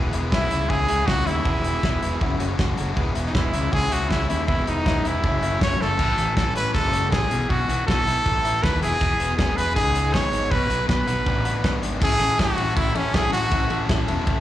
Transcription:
Already playing: D#3 E3 G#3 B3 E4 G#4
0.13 E1 G#3 B3 E4, closed hi-hat
0.31 C2 D#3 E3 G#3 B3 E4 G#4, kick, snare
0.50 C#2 C#3 G#3 C#4 E4, closed hi-hat
0.69 C#2 C#3 G#3 C#4 E4 G#4, kick
0.88 C#2 E3 G#3 B3 C#4 E4, closed hi-hat
1.07 C#2 C#3 G#3 C#4 E4 F#4, kick, snare
1.26 D#2 G#3 C#4 E4, closed hi-hat
1.45 E1 D#3 E3 G#3 B3 E4 G#4, kick
1.64 E1 G#3 B3 E4, closed hi-hat
1.82 E1 D#3 E3 G#3 B3 E4 G#4, kick, snare
2.02 E1 G#3 B3 E4, closed hi-hat
2.21 F#1 F#3 A3 C#4 F#4, kick
2.39 F#1 E3 A3 C#4 F#4, closed hi-hat
2.58 F#1 F#3 A3 C#4 F#4, kick, snare
2.78 F#1 A3 C#4 F#4, closed hi-hat
2.95 E1 D#3 E3 G#3 B3 E4 G#4, kick
3.15 E1 G#3 B3 E4, closed hi-hat
3.26 D#4, snare
3.34 E1 D#3 E3 G#3 B3 E4 G#4, kick, snare
3.53 C#2 C#3 G#3 C#4 E4, closed hi-hat
3.71 C#2 C#3 G#3 C#4 E4 G#4, kick
3.91 C#2 E3 G#3 B3 C#4 E4 F#4, closed hi-hat
4.10 C#2 C#3 G#3 C#4 E4, kick, snare
4.29 D#2 G#3 C#4 E4, closed hi-hat
4.47 E1 D#3 E3 G#3 B3 E4 G#4, kick
4.66 E1 G#3 B3 D#4 E4, closed hi-hat
4.85 E1 D#3 E3 G#3 B3 E4 G#4, kick, snare
5.04 E1 G#3 B3 E4, closed hi-hat
5.23 F#1 F#2 C#3 F#3 A3 C#4, kick
5.41 F#1 E3 F#3 A3 C#4 F#4, closed hi-hat
5.60 F#1 F#2 C#3 F#3 A3 C#4 C#5, kick, snare
5.79 F#1 F#3 A3 C#4 A4, snare
5.98 A1 A2 E3 G#3 C#4 E4, kick, crash
6.17 A1 E3, closed hi-hat
6.37 A1 E3 A4, kick, snare
6.54 A1 A2 E3 G#3 C#4 E4 B4, closed hi-hat
6.74 F#1 G#3 A4, kick
6.93 C#4, closed hi-hat
7.11 A1 E3 G#4, kick, snare
7.29 B1 B2 E3 A3 B3 F#4, closed hi-hat
7.49 B1 B2 F#4, kick
7.68 B1 E3, closed hi-hat
7.86 B1 B2 E3 A3 B3 F#4 A4, kick, snare
8.06 B1 E4, closed hi-hat
8.26 A1 A3, kick
8.45 E4, closed hi-hat
8.63 D#2 E3 B4, kick, snare
8.81 E1 E2 B2 E3 G#3 B3 G#4, closed hi-hat
9.01 E1 E3, kick
9.19 E1 B3, closed hi-hat
9.37 E1 B2 G#3 B3 G#4, kick, snare
9.57 E1 G#4 B4, closed hi-hat
9.75 C#2 D#4 G#4, kick
9.95 G#4, closed hi-hat
10.14 G#1 B3 C#5, kick, snare
10.32 D#4, closed hi-hat
10.50 B1 B2 F#3 B3 D4 F#4 B4 C#5, kick
10.69 B1 F#3, closed hi-hat
10.88 B1 B3 B4, kick, snare
11.07 B1 B2 F#3 B3 D4 F#4 C#5, closed hi-hat
11.26 A1 D4, kick
11.45 F#4, closed hi-hat
11.64 G#1 B3, kick, snare
11.82 D4, closed hi-hat
12.00 A1 A3 C#4 E4 G#4 A4, kick, crash
12.19 A1 C#4 E4 A4, ride
12.39 A1 A3 C#4 E4 F#4 A4, kick, snare, ride
12.57 A1 C#4 E4 A4, ride
12.77 A1 E4, kick, ride
12.95 A1 C#4 E4 A4, ride
13.14 A1 A3 C#4 E4 G#4 A4, kick, snare, ride
13.33 A1 F#4, ride
13.51 A1 A3 C#4 E4 A4, kick, ride
13.70 A1 C#4 E4 A4, ride
13.89 A1 A3 C#4 E4 A4, kick, snare, ride
14.08 E1 C#4 E4 A4, ride
14.27 A1, kick, ride

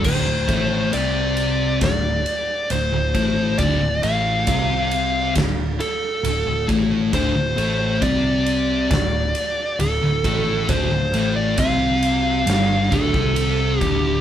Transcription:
0.04 D1 D2 D3 C5, kick, crash
0.26 D1 D2
0.48 A1 A2 A3, kick, ride
0.92 C2 C3 C4 D5, ride
1.37 ride
1.81 D1 D2 D5, kick, snare, ride
2.26 ride
2.70 D1 D2 C5, ride
2.92 D1 D2
3.14 A1 A2 A3, kick, ride
3.58 D1 D2 D3 D5, kick, ride
3.81 D1 D2
4.02 A1 A2 A3 F5, ride
4.47 C2 C3 C4, kick, ride
4.91 ride
5.35 D1 D2, kick, snare, ride
5.80 A4, ride
6.23 D1 D2, ride
6.46 D1 D2
6.68 A1 A2 A3, kick, ride
7.13 D1 D2 D3 C5, kick, ride
7.34 D1 D2
7.56 A1 A2 A3, ride
8.02 C2 C3 C4 D5, kick, ride
8.46 ride
8.90 D1 D2 D5, kick, snare, ride
9.35 ride
9.79 D1 D2 A4, ride
10.01 D1 D2
10.24 A1 A2 A3, kick, ride
10.68 D1 D2 D3 C5, kick, ride
10.90 D1 D2
11.12 A1 A2 A3, ride
11.36 D5
11.57 C2 C3 C4 F5, kick, ride
12.03 ride
12.46 G1 G2 G3, snare, ride
12.91 D1 D2 D3 A4, kick, ride
13.14 C2 C3 C4, kick
13.36 ride
13.80 D1 D2 D3 G4, kick, ride

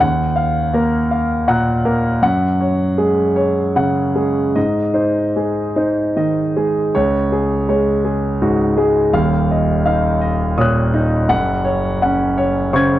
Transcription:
0.00 D#2 F#5
0.36 F5
0.73 A#3 A#4
1.11 F5
1.48 A#2 F#5 A#5 F#6
1.85 A#3 A#4
2.22 F#2 F#5
2.61 C#5
2.98 G#3 G#4
3.36 C#5
3.76 C#3 F#5
4.15 G#3 G#4
4.55 G#2 D#5
4.94 D#4 C5
5.36 G#3 G#4
5.76 D#4 C5
6.16 D#3 D#5
6.57 G#3 G#4
6.95 C#2 C#5
7.32 G#4
7.69 G#3 C#5
8.05 G#4
8.42 G#2 F#4
8.77 G#3 G#4
9.13 D#1 D#2 F5
9.51 D#5
9.86 D#4 F5
10.21 D#5
10.57 A#2 C#5 D#6 F#6
10.94 D#4 D#5
11.28 F#1 F#2 F#5
11.65 C#5
12.02 C#4 F#5
12.38 C#5
12.73 C#3 C5 C#6 G#6

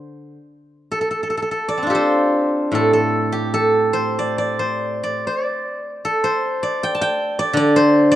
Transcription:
Already playing: D3 C5
0.92 A4
1.01 A4
1.11 A4
1.23 A4
1.30 A4
1.37 A4
1.42 A4
1.51 A4
1.68 D5
1.78 C4
1.83 D4
1.87 F4 G4
1.91 A4
1.95 C5
2.72 A2 A4
2.93 A4
3.32 G4
3.54 A4
3.93 C5
4.19 D5
4.38 D5
4.59 C5
5.03 D5
5.27 C5
5.44 D5
6.05 A4
6.24 C5
6.63 D5
6.83 G5
6.95 A5
7.01 G5
7.39 D5
7.53 D3 D5
7.76 C5
8.11 D5

